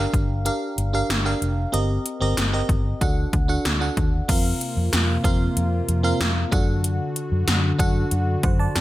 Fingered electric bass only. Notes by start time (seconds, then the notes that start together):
0.14 G1
0.78 G1
1.10 G1
1.42 F1
1.74 G1
2.21 G1
2.38 G1
2.69 G1
3.01 D2
3.33 D2
3.65 D2
3.97 D#2
4.29 F2
4.77 F2
4.93 F2
5.24 F2
5.57 F2
5.88 F2
6.20 F2
6.52 F#2
7.32 F#2
7.48 F#2
7.79 F#2
8.12 F#2
8.44 F#2
8.76 F#2